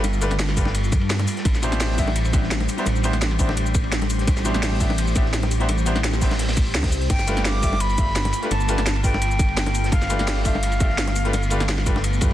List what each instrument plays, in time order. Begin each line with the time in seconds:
Already playing: ambient pad G3 A3 F4
0.04 detuned saw bass G1, closed hi-hat, ride, high bongo
0.13 cabasa
0.21 grand piano A3 D4 F4 G4 B4, closed hi-hat, ride, cabasa
0.30 detuned saw bass G1, snare, closed hi-hat, ride, high bongo
0.39 snare, closed hi-hat, ride
0.49 snare
0.56 grand piano A3 D4 F4 G4 B4, kick, open hi-hat, ride, cabasa
0.65 snare, high bongo
0.74 closed hi-hat, ride
0.84 cabasa
0.92 detuned saw bass G2, kick, closed hi-hat, ride, high bongo, cabasa
1.01 ride
1.10 snare, closed hi-hat, ride
1.19 snare, closed hi-hat, high bongo
1.28 open hi-hat, ride, cabasa
1.37 snare, closed hi-hat
1.45 detuned saw bass A1, ambient pad D4 G4 C5, kick, closed hi-hat, ride, high bongo
1.55 snare, ride, cabasa
1.62 grand piano B2 D4 E4 G4 C5, closed hi-hat, ride, cabasa
1.72 snare, closed hi-hat, high bongo
1.80 snare, closed hi-hat, open hi-hat
1.90 snare
1.98 grand piano B3 D4 E4 G4 E5, kick, open hi-hat, ride, cabasa
2.08 ride, high bongo
2.16 closed hi-hat, ride
2.25 ride, cabasa
2.33 grand piano B3 D4 E4 G4 E5, kick, closed hi-hat, ride, high bongo, cabasa
2.43 snare
2.50 snare, closed hi-hat, ride
2.60 snare, closed hi-hat, high bongo
2.69 open hi-hat, ride, cabasa
2.77 grand piano B3 D4 E4 G4 C5, closed hi-hat
2.86 detuned saw bass A1, closed hi-hat, ride, high bongo
2.96 cabasa
3.03 grand piano B3 D4 E4 G4 C5, closed hi-hat, ride, cabasa
3.13 detuned saw bass A1, snare, closed hi-hat, ride, high bongo
3.21 snare, closed hi-hat, ride
3.31 snare
3.39 grand piano B3 D4 E4 G4 C5, kick, open hi-hat, ride, cabasa
3.49 snare, high bongo
3.57 closed hi-hat, ride
3.66 cabasa
3.75 kick, closed hi-hat, ride, high bongo, cabasa
3.84 ride
3.92 snare, closed hi-hat, ride
4.02 snare, closed hi-hat, high bongo
4.10 open hi-hat, ride, cabasa
4.19 snare, closed hi-hat
4.27 detuned saw bass A1, ambient pad E4, kick, closed hi-hat, ride, high bongo
4.37 snare, ride, cabasa
4.45 grand piano B2 D4 E4 G4 C5, closed hi-hat, ride, cabasa
4.54 detuned saw bass A1, snare, closed hi-hat, high bongo
4.63 snare, closed hi-hat, open hi-hat
4.72 snare
4.80 grand piano B3 D4 E4 G4 E5, kick, open hi-hat, ride, cabasa
4.90 ride, high bongo
4.98 closed hi-hat, ride
5.07 ride, cabasa
5.15 detuned saw bass A1, grand piano B3 D4 E4 G4 E5, kick, closed hi-hat, ride, high bongo, cabasa
5.25 snare
5.33 snare, closed hi-hat, ride
5.43 snare, closed hi-hat, high bongo
5.51 open hi-hat, ride, cabasa
5.60 grand piano B3 D4 E4 G4 C5, closed hi-hat
5.69 detuned saw bass A1, closed hi-hat, ride, high bongo
5.78 cabasa
5.86 grand piano B3 D4 E4 G4 C5, closed hi-hat, ride, cabasa
5.96 detuned saw bass A1, snare, closed hi-hat, ride, high bongo
6.04 snare, closed hi-hat, ride
6.13 snare, cabasa
6.21 grand piano B3 D4 E4 G4 C5, kick, snare, open hi-hat, cabasa
6.31 snare, open hi-hat, high bongo
6.39 snare, closed hi-hat, open hi-hat
6.48 snare, open hi-hat, cabasa
6.57 kick, closed hi-hat, ride, high bongo, cabasa
6.66 ride
6.74 detuned saw bass D2, snare, closed hi-hat, open hi-hat
6.83 kick, snare, closed hi-hat, open hi-hat, high bongo
6.88 snare, open hi-hat
6.92 detuned saw bass C2, open hi-hat, ride, cabasa
7.02 closed hi-hat
7.10 detuned saw bass G1, ambient pad A3 B3 F4, flute G5, kick, closed hi-hat, crash, ride, high bongo
7.19 snare, ride, cabasa
7.27 grand piano A3 D4 F4 G4 B4, closed hi-hat, ride, cabasa
7.37 snare, closed hi-hat, high bongo
7.45 flute D6, snare, closed hi-hat, open hi-hat
7.54 snare
7.62 grand piano A3 D4 F4 G4 E5, kick, open hi-hat, ride, cabasa
7.72 ride, high bongo
7.80 flute B5, closed hi-hat, ride
7.89 ride, cabasa
7.98 grand piano A3 D4 F4 G4 E5, kick, closed hi-hat, ride, high bongo, cabasa
8.07 snare
8.15 snare, closed hi-hat, ride
8.25 snare, closed hi-hat, high bongo
8.33 open hi-hat, ride, cabasa
8.42 grand piano A3 D4 F4 G4 B4, closed hi-hat
8.51 detuned saw bass G1, flute A5, closed hi-hat, ride, high bongo
8.60 cabasa
8.68 grand piano A3 D4 F4 G4 B4, closed hi-hat, ride, cabasa
8.78 detuned saw bass G1, snare, closed hi-hat, ride, high bongo
8.85 snare, closed hi-hat, ride
8.96 snare
9.03 grand piano A3 D4 F4 G4 B4, flute G5, kick, open hi-hat, ride, cabasa
9.13 snare, high bongo
9.21 closed hi-hat, ride
9.31 cabasa
9.39 kick, closed hi-hat, ride, high bongo, cabasa
9.48 ride
9.57 snare, closed hi-hat, ride
9.66 snare, closed hi-hat, high bongo
9.75 open hi-hat, ride, cabasa
9.84 snare, closed hi-hat
9.92 detuned saw bass G1, flute F5, kick, closed hi-hat, ride, high bongo
10.02 snare, ride, cabasa
10.09 grand piano A3 D4 F4 G4 B4, closed hi-hat, ride, cabasa
10.19 detuned saw bass G1, snare, closed hi-hat, high bongo
10.28 snare, closed hi-hat, open hi-hat
10.36 snare
10.45 grand piano A3 D4 F4 G4 E5, flute F5, kick, open hi-hat, ride, cabasa
10.55 ride, high bongo
10.63 closed hi-hat, ride
10.72 ride, cabasa
10.80 detuned saw bass G1, grand piano A3 D4 F4 G4 E5, kick, closed hi-hat, ride, high bongo, cabasa
10.89 snare
10.98 snare, closed hi-hat, ride
11.07 snare, closed hi-hat, high bongo
11.16 open hi-hat, ride, cabasa
11.24 grand piano A3 D4 F4 G4 B4, closed hi-hat
11.33 detuned saw bass G1, closed hi-hat, ride, high bongo
11.43 cabasa
11.50 grand piano A3 D4 F4 G4 B4, closed hi-hat, ride, cabasa
11.60 detuned saw bass G1, snare, closed hi-hat, ride, high bongo
11.68 snare, closed hi-hat, ride
11.78 snare
11.86 grand piano A3 D4 F4 G4 B4, kick, open hi-hat, ride, cabasa
11.96 snare, high bongo
12.04 closed hi-hat, ride
12.13 cabasa
12.21 detuned saw bass G2, grand piano A3 D4 F4 G4 B4, kick, closed hi-hat, ride, high bongo, cabasa